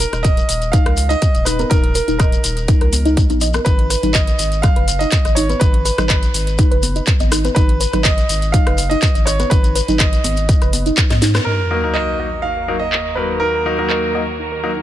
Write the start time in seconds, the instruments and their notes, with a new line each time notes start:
Already playing: grand piano A#4
0.00 synth pluck A#4, open hi-hat, shekere
0.13 sub bass D#1, synth pluck D#4, cross-stick, closed hi-hat, shekere
0.23 grand piano D#5, synth pluck D#5, kick, closed hi-hat, shekere
0.37 closed hi-hat, shekere
0.49 sub bass D#1, open hi-hat, shekere
0.62 closed hi-hat, shekere
0.72 synth pluck D#4, grand piano F5, kick, closed hi-hat, shekere
0.86 sub bass C#2, synth pluck A#4, cross-stick, closed hi-hat
0.97 open hi-hat, shekere
1.09 synth pluck D#4, grand piano D#5, closed hi-hat, shekere
1.22 kick, closed hi-hat, shekere
1.34 sub bass D#1, synth pluck D#5, closed hi-hat, shekere
1.45 synth pluck D#4, grand piano B4, cross-stick, open hi-hat, shekere
1.59 synth pluck A#4, closed hi-hat, high conga, shekere
1.70 sub bass D#1, synth pluck D#4, grand piano A#4, kick, closed hi-hat, shekere
1.84 closed hi-hat
1.95 synth pluck A#4, open hi-hat, shekere
2.08 sub bass D#1, synth pluck D#4, closed hi-hat, shekere
2.19 grand piano A#4, synth pluck D#5, kick, cross-stick, closed hi-hat, shekere
2.32 closed hi-hat, shekere
2.44 sub bass D#1, open hi-hat, shekere
2.57 closed hi-hat, shekere
2.68 synth pluck D#4, kick, closed hi-hat, shekere
2.81 sub bass C#2, synth pluck A#4, cross-stick, closed hi-hat
2.93 open hi-hat, high conga, shekere
3.05 synth pluck D#4, closed hi-hat, shekere
3.17 synth pluck D#4, kick, closed hi-hat, shekere
3.29 sub bass A#1, synth pluck D#4, closed hi-hat, high conga, shekere
3.41 synth pluck D#5, open hi-hat, shekere
3.53 synth pluck A#4, cross-stick, closed hi-hat, high conga, shekere
3.65 sub bass G#1, synth pluck D#4, grand piano B4, kick, closed hi-hat, shekere
3.79 closed hi-hat
3.90 synth pluck B4, cross-stick, open hi-hat, shekere
4.03 sub bass G#1, synth pluck D#4, closed hi-hat, low conga, shekere
4.13 grand piano D#5, synth pluck D#5, kick, clap, closed hi-hat, shekere
4.27 closed hi-hat, shekere
4.39 sub bass G#1, open hi-hat, shekere
4.52 closed hi-hat, shekere
4.62 synth pluck D#4, grand piano F5, kick, cross-stick, closed hi-hat, low conga, shekere
4.76 sub bass F#1, synth pluck B4, closed hi-hat
4.88 open hi-hat, shekere
4.99 synth pluck D#4, grand piano D#5, closed hi-hat, shekere
5.12 kick, clap, closed hi-hat, shekere
5.25 sub bass G#1, synth pluck D#5, cross-stick, closed hi-hat, shekere
5.35 synth pluck D#4, grand piano C#5, open hi-hat, shekere
5.49 synth pluck B4, closed hi-hat, high conga, shekere
5.60 sub bass G#1, synth pluck D#4, grand piano B4, kick, closed hi-hat, shekere
5.74 closed hi-hat
5.85 synth pluck B4, open hi-hat, shekere
5.98 sub bass G#1, synth pluck D#4, cross-stick, closed hi-hat, low conga, shekere
6.08 grand piano B4, synth pluck D#5, kick, clap, closed hi-hat, shekere
6.23 closed hi-hat, shekere
6.34 sub bass G#1, open hi-hat, shekere
6.47 closed hi-hat, shekere
6.58 synth pluck D#4, kick, cross-stick, closed hi-hat, shekere
6.71 sub bass F#1, synth pluck B4, closed hi-hat
6.83 open hi-hat, high conga, shekere
6.96 synth pluck D#4, closed hi-hat, shekere
7.07 kick, clap, closed hi-hat, shekere
7.20 sub bass G#1, synth pluck D#5, closed hi-hat, high conga, shekere
7.32 synth pluck D#4, cross-stick, open hi-hat, shekere
7.44 synth pluck B4, closed hi-hat, high conga, shekere
7.55 sub bass G#1, synth pluck D#4, grand piano B4, kick, closed hi-hat, shekere
7.69 closed hi-hat
7.80 synth pluck B4, open hi-hat, shekere
7.93 sub bass G#1, synth pluck D#4, cross-stick, closed hi-hat, low conga, shekere
8.03 grand piano D#5, synth pluck D#5, kick, clap, closed hi-hat, shekere
8.18 closed hi-hat, shekere
8.29 sub bass G#1, open hi-hat, shekere
8.42 closed hi-hat, shekere
8.52 synth pluck D#4, grand piano F5, kick, closed hi-hat, low conga, shekere
8.67 sub bass F#1, synth pluck B4, cross-stick, closed hi-hat
8.78 open hi-hat, shekere
8.90 synth pluck D#4, grand piano D#5, closed hi-hat, shekere
9.02 kick, clap, closed hi-hat, shekere
9.15 sub bass G#1, synth pluck D#5, closed hi-hat, shekere
9.26 synth pluck D#4, grand piano C#5, cross-stick, open hi-hat, shekere
9.40 synth pluck B4, closed hi-hat, high conga, shekere
9.50 sub bass G#1, synth pluck D#4, grand piano B4, kick, closed hi-hat, shekere
9.64 closed hi-hat, shekere
9.75 synth pluck B4, open hi-hat, shekere
9.88 sub bass G#1, synth pluck D#4, closed hi-hat, low conga, shekere
9.99 grand piano D#5, synth pluck D#5, kick, cross-stick, clap, closed hi-hat, shekere
10.13 closed hi-hat, shekere
10.24 sub bass G#1, open hi-hat, high conga, shekere
10.37 closed hi-hat, shekere
10.49 synth pluck D#4, kick, closed hi-hat, shekere
10.62 sub bass F#1, synth pluck B4, cross-stick, closed hi-hat, shekere
10.73 open hi-hat, high conga, shekere
10.86 synth pluck D#4, closed hi-hat, shekere
10.97 kick, clap, closed hi-hat, shekere
11.10 sub bass G#2, synth pluck D#5, snare, closed hi-hat, high conga, shekere
11.22 synth pluck D#4, snare, open hi-hat, shekere
11.34 synth pluck B4, cross-stick, snare, closed hi-hat, high conga, shekere
11.45 string section D#2 D#3 A#3 F#4 A#4, synth pluck D#4, grand piano A#4, sub drop
11.71 grand piano F#3 A#3 D#4 A#4, synth pluck A#4
11.84 grand piano F#3 A#3 D#4 A#4, synth pluck D#4
11.94 grand piano D#5, synth pluck D#5, clap
12.20 grand piano F#3 A#3 D#4 D#5
12.42 synth pluck D#4, grand piano F5
12.57 synth pluck A#4
12.68 grand piano F#3 A#3 D#4 A#4
12.80 synth pluck D#4, grand piano D#5
12.93 clap
13.06 synth pluck D#5
13.15 grand piano F#3 A#3 D#4 A#4 B4, synth pluck D#4
13.40 synth pluck D#4, grand piano A#4
13.66 grand piano F#3 A#3 D#4 A#4, synth pluck A#4
13.79 grand piano F#3 A#3 D#4 A#4, synth pluck D#4
13.89 grand piano A#4, synth pluck D#5, clap
14.15 grand piano F#3 A#3 D#4 D#5
14.39 synth pluck D#4
14.52 synth pluck A#4
14.64 grand piano F#3 A#3 D#4 A#4
14.77 synth pluck D#4